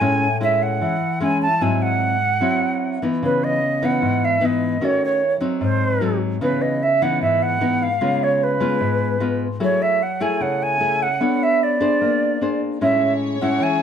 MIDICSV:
0, 0, Header, 1, 4, 480
1, 0, Start_track
1, 0, Key_signature, 4, "minor"
1, 0, Tempo, 400000
1, 7, Time_signature, 4, 2, 24, 8
1, 16589, End_track
2, 0, Start_track
2, 0, Title_t, "Flute"
2, 0, Program_c, 0, 73
2, 0, Note_on_c, 0, 80, 102
2, 451, Note_off_c, 0, 80, 0
2, 518, Note_on_c, 0, 76, 83
2, 753, Note_on_c, 0, 78, 82
2, 771, Note_off_c, 0, 76, 0
2, 1461, Note_off_c, 0, 78, 0
2, 1474, Note_on_c, 0, 80, 89
2, 1686, Note_off_c, 0, 80, 0
2, 1706, Note_on_c, 0, 81, 93
2, 1946, Note_on_c, 0, 80, 92
2, 1964, Note_off_c, 0, 81, 0
2, 2187, Note_on_c, 0, 78, 113
2, 2205, Note_off_c, 0, 80, 0
2, 3621, Note_off_c, 0, 78, 0
2, 3891, Note_on_c, 0, 71, 87
2, 4127, Note_on_c, 0, 75, 97
2, 4145, Note_off_c, 0, 71, 0
2, 4618, Note_on_c, 0, 78, 84
2, 4636, Note_off_c, 0, 75, 0
2, 5096, Note_on_c, 0, 76, 85
2, 5114, Note_off_c, 0, 78, 0
2, 5341, Note_on_c, 0, 75, 86
2, 5359, Note_off_c, 0, 76, 0
2, 5816, Note_on_c, 0, 73, 92
2, 5834, Note_off_c, 0, 75, 0
2, 6035, Note_off_c, 0, 73, 0
2, 6062, Note_on_c, 0, 73, 84
2, 6408, Note_off_c, 0, 73, 0
2, 6770, Note_on_c, 0, 72, 78
2, 7424, Note_off_c, 0, 72, 0
2, 7712, Note_on_c, 0, 71, 87
2, 7940, Note_on_c, 0, 75, 90
2, 7958, Note_off_c, 0, 71, 0
2, 8195, Note_on_c, 0, 76, 81
2, 8213, Note_off_c, 0, 75, 0
2, 8432, Note_on_c, 0, 78, 82
2, 8450, Note_off_c, 0, 76, 0
2, 8658, Note_off_c, 0, 78, 0
2, 8666, Note_on_c, 0, 76, 81
2, 8912, Note_on_c, 0, 78, 96
2, 8930, Note_off_c, 0, 76, 0
2, 9393, Note_on_c, 0, 77, 92
2, 9411, Note_off_c, 0, 78, 0
2, 9882, Note_on_c, 0, 73, 84
2, 9900, Note_off_c, 0, 77, 0
2, 10122, Note_on_c, 0, 71, 86
2, 10140, Note_off_c, 0, 73, 0
2, 11306, Note_off_c, 0, 71, 0
2, 11560, Note_on_c, 0, 73, 84
2, 11787, Note_on_c, 0, 76, 84
2, 11805, Note_off_c, 0, 73, 0
2, 12033, Note_on_c, 0, 78, 78
2, 12051, Note_off_c, 0, 76, 0
2, 12263, Note_on_c, 0, 80, 83
2, 12281, Note_off_c, 0, 78, 0
2, 12502, Note_on_c, 0, 78, 89
2, 12520, Note_off_c, 0, 80, 0
2, 12756, Note_on_c, 0, 80, 105
2, 12774, Note_off_c, 0, 78, 0
2, 13230, Note_on_c, 0, 78, 92
2, 13248, Note_off_c, 0, 80, 0
2, 13717, Note_on_c, 0, 76, 94
2, 13735, Note_off_c, 0, 78, 0
2, 13959, Note_on_c, 0, 74, 78
2, 13977, Note_off_c, 0, 76, 0
2, 15142, Note_off_c, 0, 74, 0
2, 15389, Note_on_c, 0, 76, 89
2, 15746, Note_off_c, 0, 76, 0
2, 16101, Note_on_c, 0, 78, 82
2, 16355, Note_on_c, 0, 80, 95
2, 16373, Note_off_c, 0, 78, 0
2, 16580, Note_off_c, 0, 80, 0
2, 16589, End_track
3, 0, Start_track
3, 0, Title_t, "String section"
3, 0, Program_c, 1, 48
3, 15361, Note_on_c, 1, 73, 78
3, 15365, Note_on_c, 1, 68, 66
3, 16589, Note_off_c, 1, 68, 0
3, 16589, Note_off_c, 1, 73, 0
3, 16589, End_track
4, 0, Start_track
4, 0, Title_t, "Nylon-string guitar"
4, 0, Program_c, 2, 24
4, 6, Note_on_c, 2, 45, 66
4, 10, Note_on_c, 2, 56, 52
4, 17, Note_on_c, 2, 64, 50
4, 18, Note_on_c, 2, 61, 49
4, 317, Note_off_c, 2, 56, 0
4, 319, Note_off_c, 2, 61, 0
4, 321, Note_off_c, 2, 64, 0
4, 485, Note_on_c, 2, 56, 45
4, 492, Note_on_c, 2, 61, 49
4, 495, Note_on_c, 2, 64, 52
4, 945, Note_off_c, 2, 45, 0
4, 978, Note_on_c, 2, 52, 67
4, 1133, Note_off_c, 2, 56, 0
4, 1136, Note_off_c, 2, 61, 0
4, 1137, Note_off_c, 2, 64, 0
4, 1445, Note_on_c, 2, 56, 54
4, 1454, Note_on_c, 2, 64, 53
4, 1455, Note_on_c, 2, 61, 55
4, 1757, Note_off_c, 2, 56, 0
4, 1759, Note_off_c, 2, 61, 0
4, 1761, Note_off_c, 2, 64, 0
4, 1910, Note_off_c, 2, 52, 0
4, 1929, Note_on_c, 2, 44, 66
4, 1935, Note_on_c, 2, 60, 50
4, 1936, Note_on_c, 2, 54, 54
4, 1941, Note_on_c, 2, 64, 58
4, 2577, Note_off_c, 2, 54, 0
4, 2579, Note_off_c, 2, 60, 0
4, 2581, Note_off_c, 2, 64, 0
4, 2868, Note_off_c, 2, 44, 0
4, 2887, Note_on_c, 2, 54, 53
4, 2895, Note_on_c, 2, 60, 55
4, 2901, Note_on_c, 2, 64, 60
4, 3572, Note_off_c, 2, 54, 0
4, 3576, Note_off_c, 2, 60, 0
4, 3578, Note_off_c, 2, 64, 0
4, 3627, Note_on_c, 2, 52, 50
4, 3635, Note_on_c, 2, 59, 55
4, 3640, Note_on_c, 2, 63, 55
4, 3870, Note_on_c, 2, 49, 65
4, 4302, Note_off_c, 2, 52, 0
4, 4306, Note_off_c, 2, 59, 0
4, 4308, Note_off_c, 2, 63, 0
4, 4588, Note_on_c, 2, 52, 59
4, 4591, Note_on_c, 2, 59, 60
4, 4594, Note_on_c, 2, 63, 64
4, 4798, Note_off_c, 2, 49, 0
4, 4824, Note_on_c, 2, 44, 62
4, 5263, Note_off_c, 2, 52, 0
4, 5264, Note_off_c, 2, 59, 0
4, 5266, Note_off_c, 2, 63, 0
4, 5290, Note_on_c, 2, 52, 51
4, 5295, Note_on_c, 2, 59, 55
4, 5305, Note_on_c, 2, 63, 57
4, 5734, Note_off_c, 2, 52, 0
4, 5736, Note_off_c, 2, 59, 0
4, 5741, Note_off_c, 2, 63, 0
4, 5755, Note_off_c, 2, 44, 0
4, 5775, Note_on_c, 2, 51, 62
4, 5776, Note_on_c, 2, 57, 54
4, 5782, Note_on_c, 2, 61, 53
4, 5787, Note_on_c, 2, 66, 53
4, 6251, Note_off_c, 2, 57, 0
4, 6255, Note_off_c, 2, 61, 0
4, 6258, Note_off_c, 2, 66, 0
4, 6481, Note_off_c, 2, 51, 0
4, 6486, Note_on_c, 2, 54, 63
4, 6492, Note_on_c, 2, 60, 57
4, 6494, Note_on_c, 2, 63, 64
4, 6730, Note_on_c, 2, 44, 69
4, 7172, Note_off_c, 2, 54, 0
4, 7174, Note_off_c, 2, 60, 0
4, 7176, Note_off_c, 2, 63, 0
4, 7211, Note_on_c, 2, 54, 53
4, 7221, Note_on_c, 2, 60, 54
4, 7225, Note_on_c, 2, 63, 54
4, 7654, Note_off_c, 2, 54, 0
4, 7660, Note_off_c, 2, 60, 0
4, 7660, Note_off_c, 2, 63, 0
4, 7668, Note_off_c, 2, 44, 0
4, 7694, Note_on_c, 2, 49, 59
4, 7695, Note_on_c, 2, 52, 52
4, 7699, Note_on_c, 2, 59, 49
4, 7707, Note_on_c, 2, 63, 55
4, 8171, Note_off_c, 2, 52, 0
4, 8174, Note_off_c, 2, 59, 0
4, 8178, Note_off_c, 2, 63, 0
4, 8421, Note_on_c, 2, 52, 63
4, 8423, Note_on_c, 2, 59, 63
4, 8429, Note_on_c, 2, 63, 67
4, 8630, Note_off_c, 2, 49, 0
4, 8652, Note_on_c, 2, 44, 65
4, 9099, Note_off_c, 2, 52, 0
4, 9099, Note_off_c, 2, 59, 0
4, 9102, Note_off_c, 2, 63, 0
4, 9128, Note_on_c, 2, 52, 51
4, 9137, Note_on_c, 2, 59, 57
4, 9139, Note_on_c, 2, 63, 61
4, 9440, Note_off_c, 2, 52, 0
4, 9442, Note_off_c, 2, 59, 0
4, 9445, Note_off_c, 2, 63, 0
4, 9588, Note_off_c, 2, 44, 0
4, 9612, Note_on_c, 2, 56, 51
4, 9613, Note_on_c, 2, 49, 66
4, 9617, Note_on_c, 2, 59, 44
4, 9619, Note_on_c, 2, 65, 54
4, 10293, Note_off_c, 2, 56, 0
4, 10294, Note_off_c, 2, 59, 0
4, 10297, Note_off_c, 2, 65, 0
4, 10324, Note_on_c, 2, 56, 59
4, 10331, Note_on_c, 2, 59, 57
4, 10337, Note_on_c, 2, 65, 59
4, 10549, Note_off_c, 2, 49, 0
4, 10567, Note_on_c, 2, 44, 60
4, 11009, Note_off_c, 2, 56, 0
4, 11011, Note_off_c, 2, 59, 0
4, 11015, Note_off_c, 2, 65, 0
4, 11043, Note_on_c, 2, 56, 52
4, 11047, Note_on_c, 2, 59, 56
4, 11055, Note_on_c, 2, 65, 54
4, 11356, Note_off_c, 2, 56, 0
4, 11358, Note_off_c, 2, 59, 0
4, 11360, Note_off_c, 2, 65, 0
4, 11504, Note_off_c, 2, 44, 0
4, 11520, Note_on_c, 2, 54, 65
4, 11523, Note_on_c, 2, 57, 46
4, 11524, Note_on_c, 2, 64, 55
4, 11530, Note_on_c, 2, 68, 59
4, 12001, Note_off_c, 2, 57, 0
4, 12004, Note_off_c, 2, 64, 0
4, 12006, Note_off_c, 2, 68, 0
4, 12245, Note_on_c, 2, 57, 56
4, 12251, Note_on_c, 2, 64, 62
4, 12257, Note_on_c, 2, 68, 69
4, 12461, Note_off_c, 2, 54, 0
4, 12485, Note_on_c, 2, 49, 65
4, 12928, Note_off_c, 2, 57, 0
4, 12931, Note_off_c, 2, 64, 0
4, 12933, Note_off_c, 2, 68, 0
4, 12963, Note_on_c, 2, 57, 51
4, 12970, Note_on_c, 2, 64, 49
4, 12973, Note_on_c, 2, 68, 54
4, 13275, Note_off_c, 2, 57, 0
4, 13278, Note_off_c, 2, 64, 0
4, 13279, Note_off_c, 2, 68, 0
4, 13422, Note_off_c, 2, 49, 0
4, 13445, Note_on_c, 2, 59, 60
4, 13450, Note_on_c, 2, 62, 49
4, 13450, Note_on_c, 2, 69, 47
4, 13456, Note_on_c, 2, 73, 53
4, 14129, Note_off_c, 2, 62, 0
4, 14129, Note_off_c, 2, 69, 0
4, 14133, Note_off_c, 2, 73, 0
4, 14165, Note_on_c, 2, 62, 61
4, 14170, Note_on_c, 2, 68, 56
4, 14180, Note_on_c, 2, 72, 55
4, 14382, Note_off_c, 2, 59, 0
4, 14418, Note_on_c, 2, 58, 60
4, 14847, Note_off_c, 2, 62, 0
4, 14850, Note_off_c, 2, 68, 0
4, 14853, Note_off_c, 2, 72, 0
4, 14896, Note_on_c, 2, 62, 48
4, 14906, Note_on_c, 2, 68, 45
4, 14910, Note_on_c, 2, 72, 56
4, 15333, Note_off_c, 2, 62, 0
4, 15337, Note_off_c, 2, 68, 0
4, 15339, Note_off_c, 2, 72, 0
4, 15347, Note_off_c, 2, 58, 0
4, 15372, Note_on_c, 2, 45, 62
4, 15376, Note_on_c, 2, 56, 50
4, 15382, Note_on_c, 2, 61, 53
4, 15388, Note_on_c, 2, 64, 48
4, 16051, Note_off_c, 2, 56, 0
4, 16053, Note_off_c, 2, 61, 0
4, 16058, Note_off_c, 2, 64, 0
4, 16096, Note_on_c, 2, 56, 58
4, 16100, Note_on_c, 2, 61, 57
4, 16108, Note_on_c, 2, 64, 63
4, 16305, Note_off_c, 2, 45, 0
4, 16325, Note_on_c, 2, 52, 64
4, 16589, Note_off_c, 2, 52, 0
4, 16589, Note_off_c, 2, 56, 0
4, 16589, Note_off_c, 2, 61, 0
4, 16589, Note_off_c, 2, 64, 0
4, 16589, End_track
0, 0, End_of_file